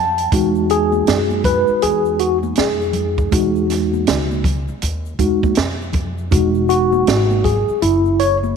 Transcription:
Already playing: F2 A5
0.18 closed hi-hat, shaker
0.32 E2 G#3 D#4 F#4, kick, closed hi-hat, shaker
0.55 shaker
0.70 G#4, closed hi-hat, shaker
0.92 high conga, shaker
1.07 F#2, snare, closed hi-hat, shaker
1.30 high conga, shaker
1.44 B4, kick, closed hi-hat, low conga, shaker
1.67 muted upright bass stroke, shaker
1.82 E2 G#4, closed hi-hat, shaker
2.05 shaker
2.19 F#4, closed hi-hat, shaker
2.43 high conga, shaker
2.55 F2 G#4, snare, closed hi-hat, shaker
2.81 shaker
2.93 closed hi-hat, low conga, shaker
3.18 kick, shaker
3.31 E2 G#3 D#4 F#4, kick, closed hi-hat, shaker
3.56 shaker
3.70 snare, closed hi-hat, shaker
3.93 high conga, shaker
4.07 C#2, snare, closed hi-hat, shaker
4.31 high conga, shaker
4.44 kick, closed hi-hat, low conga, shaker
4.68 muted upright bass stroke, shaker
4.82 D#2, closed hi-hat, shaker
5.06 shaker
5.19 E2 G#3 D#4 F#4, kick, closed hi-hat, shaker
5.43 kick, high conga, shaker
5.55 F2, snare, closed hi-hat, shaker
5.82 shaker
5.93 kick, closed hi-hat, low conga, shaker
6.18 shaker
6.31 E1 G#3 D#4 F#4, kick, closed hi-hat, shaker
6.55 shaker
6.69 F#4, closed hi-hat, shaker
6.92 high conga, shaker
7.07 G#1, snare, closed hi-hat, shaker
7.31 high conga, shaker
7.44 G#4, kick, closed hi-hat, low conga, shaker
7.68 muted upright bass stroke, shaker
7.82 F#1 E4, closed hi-hat, shaker
8.05 shaker
8.19 C#5, closed hi-hat, shaker
8.43 high conga, shaker

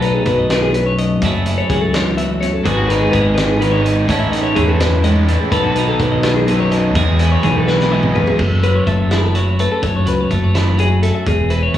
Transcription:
Already playing: B1 B2 F#3 A3 A4
0.01 D#4 B4, closed hi-hat
0.14 G#4
0.25 B1 F#3 B4, kick, closed hi-hat
0.39 D#5
0.50 B4, snare, closed hi-hat
0.62 G#4
0.74 F#2 B4, closed hi-hat
0.86 C#5
0.98 D#5, closed hi-hat
1.22 F#1 F#2 F#3 A3 E4 F#5, kick, closed hi-hat
1.26 G#4
1.34 E5
1.46 E4 D#5, closed hi-hat
1.58 C#5
1.70 C#2 F#3 G#4, kick, closed hi-hat
1.81 A4
1.93 C#5, snare, closed hi-hat
2.17 E2 E5, closed hi-hat
2.41 F#2 C#5, closed hi-hat
2.54 A4
2.64 G#1 G#2 D#3 G#3 B3 D#4 F#4 G#4 B4, kick, closed hi-hat
2.77 F#4
2.88 D#4 B4, closed hi-hat
2.99 G#4
3.11 G#1 G#3 B4, kick, closed hi-hat
3.23 D#5
3.35 B4, snare, closed hi-hat
3.48 G#4
3.59 G#2 D#3 G#3 B3 D#4 G#4 B4, closed hi-hat
3.71 C#5
3.84 D#5, closed hi-hat
4.07 A1 A2 E3 A3 C#4 D#4 E4 A4 F#5, kick, closed hi-hat
4.20 E5
4.31 D#5, closed hi-hat
4.43 C#5
4.55 E2 E3 G#4, kick, closed hi-hat
4.68 A4
4.80 F#2 B4, snare, closed hi-hat
5.04 G#2 A2 E3 A3 C#4 E4 A4 D#5, closed hi-hat
5.28 A2 B4, closed hi-hat
5.40 G#4
5.51 B1 B2 D#3 F#3 B3 D#4 A4 B4, kick, closed hi-hat
5.63 F#4
5.75 D#4 B4, closed hi-hat
5.88 A4
5.99 B1 F#3 B4, kick, closed hi-hat
6.12 D#5
6.23 B4, snare, closed hi-hat
6.36 G#4
6.46 F#2 B2 D#3 F#3 B3 D#4 A4 B4, closed hi-hat
6.60 C#5
6.71 D#5, closed hi-hat
6.95 E2 E3 G#3 B3 E4 G#4 F#5, kick, closed hi-hat
7.08 E5
7.19 E4 D#5, closed hi-hat
7.32 C#5
7.43 B1 E3 G#4, kick, closed hi-hat
7.57 A4
7.68 B4, snare
7.80 snare
7.90 B2 E3 G#3 B3 E4 G#4 D#5
8.03 mid tom
8.15 B4, mid tom
8.27 G#4, floor tom
8.39 F#1 F#2 A4, kick, crash
8.63 F#3 B4, closed hi-hat
8.75 C#5
8.87 F#1 A3 E5, kick, closed hi-hat
9.00 C#5
9.11 E4 G#4, snare, closed hi-hat
9.24 A4
9.35 F#3 C#5, closed hi-hat
9.59 A3 B4, closed hi-hat
9.72 A4
9.82 F#1 F#2 C#5, kick, closed hi-hat
9.96 C#5
10.06 C#2 F#3 B4, closed hi-hat
10.21 C#5
10.31 F#1 A3 B4, kick, closed hi-hat
10.44 C#5
10.55 E4 D#5, snare, closed hi-hat
10.68 C#5
10.78 F#3 G#4, closed hi-hat
11.03 A3 A4, closed hi-hat
11.15 E5
11.26 E1 E2 G#4, kick, closed hi-hat
11.50 E3 B4, closed hi-hat
11.63 C#5
11.74 E1 E5, kick, closed hi-hat

